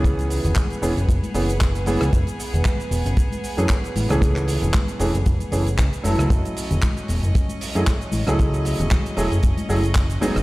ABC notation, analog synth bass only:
X:1
M:4/4
L:1/16
Q:"Swing 16ths" 1/4=115
K:F#dor
V:1 name="Analog synth bass" clef=bass
C,,3 E,,, z2 E,,, F,,, F,,, z F,,,4- F,,, C,, | F,,, z2 E,,, z2 E,,, F,,, z3 F,, z2 A,,, C,,- | C,,3 E,,, z2 E,,, F,,, F,,, z F,,,2 C,, z F,,, C,, | F,,, z2 E,,, z2 E,,, F,,, z3 F,, z2 A,,, C,,- |
C,,3 E,,, z2 E,,, F,,, F,,, z F,,,4 z F,,, |]